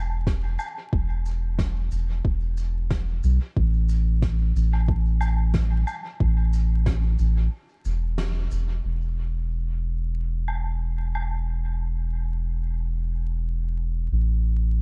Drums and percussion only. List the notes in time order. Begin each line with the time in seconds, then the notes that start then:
0.27 kick, snare
0.59 low woodblock, shaker
0.93 kick
1.26 shaker
1.59 kick, snare
1.91 shaker
2.25 kick
2.57 shaker
2.90 kick, snare
3.23 shaker
3.57 kick
3.89 shaker
4.22 kick, snare
4.56 shaker
4.73 low woodblock
4.88 kick
5.21 low woodblock, shaker
5.54 kick, snare
5.87 low woodblock, shaker
6.20 kick
6.53 shaker
6.86 kick, snare
7.19 shaker
7.85 shaker
8.18 snare
8.51 shaker
10.48 low woodblock
11.15 low woodblock